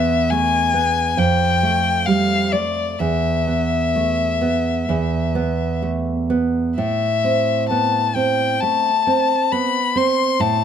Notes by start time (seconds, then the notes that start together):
Already playing: E2 B3 E5
0.30 A3 G#5
0.74 B3
1.17 F2 G5
1.63 A3
2.06 G3 F5
2.52 A3 D5
2.99 E2 E5
3.47 B3
3.96 A3
4.41 B3
4.89 E2
5.35 B3
5.82 A3
6.30 B3
6.78 A2 E5
7.24 C4
7.70 B3 A5
8.15 C4 G5
8.60 A3 A5
9.07 C4
9.52 B3 B5
9.96 C4 C6
10.40 A2 A5